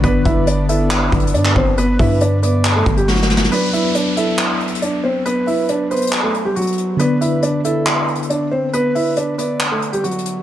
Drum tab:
HH |x-----------x-----------x-----------x-----------x-----------x---x---x---x-----------------------|x-----------o-----------x-----------x-----------x-----------x-----x-----------------------------|x-----------x-----------x-----------x-----------x-----------x---x---x---x-----------------------|x-----------o-----------x-----------x--x--x--x--------------x-----------x--x--x--x--x-----------|
CP |------------------------------------------------x-----------------------------x-----------------|------------------------------------------------x-----------------------------------------------|------------------------------------------------x-----------------------------------------------|------------------------------------------------x-----------------------------------------------|
SD |------------------------------------------------------------------------------------------------|------------------------------------------------------------------------o---o---o---o---o---o---|------------------------------------------------------------------------------------------------|------------------------------------------------------------------------------------------------|
BD |o-----------o-----------------------------------------------o-----------------------o-----------|------------o-----------------------------------------------o-----------------------------------|------------------------------------------------------------------------------------------------|------------------------------------------------------------------------------------------------|

HH |x-----------x-----------x-----------x-----------x-----------x---x---x---x-----------------------|x-----------o-----------x-----------x-----------x-----------x-----x-----x---x---x---x-----------|
CP |------------------------------------------------x-----------------------------------------------|------------------------------------------------x-----------------------------------------------|
SD |------------------------------------------------------------------------------------------------|------------------------------------------------------------------------------------------------|
BD |------------------------------------------------------------------------------------------------|------------------------------------------------------------------------------------------------|